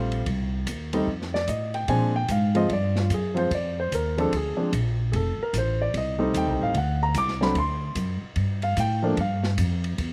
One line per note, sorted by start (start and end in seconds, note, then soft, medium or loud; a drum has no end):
0.00 0.25 A#1 medium
0.00 0.24 G3 medium
0.00 0.24 A3 medium
0.00 0.24 C4 medium
0.00 0.24 F4 medium
0.12 ride soft
0.26 0.66 C2 medium
0.26 kick soft
0.26 ride medium
0.67 1.06 D#2 medium
0.67 kick soft
0.67 hi-hat pedal medium
0.67 ride medium
0.93 1.06 G3 medium
0.93 1.06 A3 medium
0.93 1.06 C4 medium
0.93 1.06 D#4 medium
0.93 ride medium
1.07 1.46 F2 medium
1.07 kick soft
1.22 snare soft
1.34 1.48 D5 medium
1.34 snare soft
1.48 1.87 A2 medium
1.48 1.74 D#5 medium
1.48 kick soft
1.48 hi-hat pedal medium
1.48 ride medium
1.74 1.88 G5 medium
1.74 ride soft
1.88 2.27 A#2 medium
1.88 2.12 F3 medium
1.88 2.12 G#3 medium
1.88 2.12 C4 medium
1.88 2.12 D4 medium
1.88 2.14 G#5 medium
1.88 kick soft
1.88 ride medium
2.16 2.29 G5 medium
2.28 2.68 G#2 medium
2.28 2.55 F5 medium
2.28 kick soft
2.28 hi-hat pedal medium
2.28 ride medium
2.55 2.68 F3 medium
2.55 2.68 G#3 medium
2.55 2.68 C4 medium
2.55 2.68 F4 medium
2.55 2.70 D#5 medium
2.55 ride soft
2.69 3.08 G2 medium
2.69 2.96 D5 medium
2.69 kick soft
2.69 ride medium
2.96 3.12 F4 medium
2.96 snare soft
3.10 3.49 F#2 medium
3.10 kick soft
3.10 hi-hat pedal soft
3.10 ride medium
3.14 3.37 G#4 medium
3.34 3.48 F3 medium
3.34 3.49 G#3 medium
3.34 3.49 C4 medium
3.34 3.49 F4 medium
3.34 3.51 C5 medium
3.34 ride soft
3.51 3.90 F2 medium
3.51 kick soft
3.51 ride medium
3.55 3.78 D5 medium
3.80 3.92 C5 medium
3.91 4.30 D#2 medium
3.91 4.18 A#4 medium
3.91 kick soft
3.91 hi-hat pedal medium
3.91 ride medium
4.17 4.30 F3 medium
4.17 4.30 G#3 medium
4.17 4.31 C4 medium
4.17 4.31 D4 medium
4.17 4.33 A4 medium
4.17 ride soft
4.32 4.56 D2 medium
4.32 kick soft
4.32 ride medium
4.36 4.72 G#4 medium
4.57 4.70 F3 medium
4.57 4.70 G#3 soft
4.57 4.70 C4 medium
4.57 4.70 D4 medium
4.57 muted upright bass stroke soft
4.72 5.11 A#1 medium
4.72 kick soft
4.72 hi-hat pedal soft
4.72 ride medium
5.12 5.37 F1 medium
5.12 5.14 G#4 soft
5.12 5.39 A4 medium
5.12 kick soft
5.12 ride medium
5.38 muted upright bass stroke soft
5.43 5.54 A#4 medium
5.53 5.92 A1 medium
5.53 kick soft
5.53 hi-hat pedal medium
5.53 ride medium
5.58 5.81 C5 medium
5.82 5.94 D5 medium
5.94 6.33 C2 medium
5.94 6.33 D#5 medium
5.94 kick soft
5.94 ride medium
6.19 6.71 G3 medium
6.19 6.71 A3 medium
6.19 6.72 C4 medium
6.19 6.71 D#4 medium
6.34 6.47 D#2 medium
6.34 6.61 G5 medium
6.34 kick soft
6.34 hi-hat pedal medium
6.34 ride medium
6.47 6.61 C2 medium
6.61 6.73 A1 medium
6.61 6.75 F5 medium
6.74 7.13 D2 medium
6.74 7.01 F#5 medium
6.74 kick soft
6.74 ride medium
7.03 7.15 A#5 medium
7.14 7.54 C2 medium
7.14 7.41 D6 loud
7.14 kick soft
7.14 hi-hat pedal medium
7.14 ride medium
7.28 snare soft
7.41 7.54 F#3 medium
7.41 7.54 A3 medium
7.41 7.54 C4 medium
7.41 7.54 D4 medium
7.41 7.56 B5 medium
7.41 snare soft
7.55 7.94 D2 medium
7.55 8.19 C6 medium
7.55 kick soft
7.55 ride medium
7.95 8.20 F#2 medium
7.95 kick soft
7.95 hi-hat pedal soft
7.95 ride medium
8.21 muted upright bass stroke soft
8.36 8.75 G2 medium
8.36 kick soft
8.36 ride medium
8.62 8.77 F5 medium
8.62 ride soft
8.77 9.16 A2 medium
8.77 9.16 G5 medium
8.77 kick soft
8.77 hi-hat pedal medium
8.77 ride medium
9.03 9.15 F3 medium
9.03 9.16 A3 medium
9.03 9.16 A#3 medium
9.03 9.16 D4 medium
9.17 9.56 G2 medium
9.17 9.44 F5 medium
9.17 kick soft
9.17 ride medium
9.43 snare soft
9.58 9.97 F2 medium
9.58 kick soft
9.58 hi-hat pedal medium
9.58 ride medium
9.84 ride soft
9.98 10.13 E2 medium
9.98 kick soft
9.98 ride medium